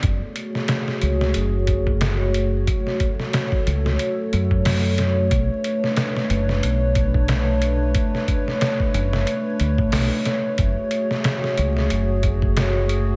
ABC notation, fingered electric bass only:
X:1
M:4/4
L:1/16
Q:"Swing 16ths" 1/4=91
K:F#m
V:1 name="Fingered electric bass" clef=bass
F,,, z4 z C,,2 F,,,8 | z6 C,,2 z2 F,,6 | B,,, z4 z F,,,2 B,,,8 | z6 F,,,2 z2 D,, A,,, B,,, z3 |
F,,, z4 z C,,2 F,,,8 |]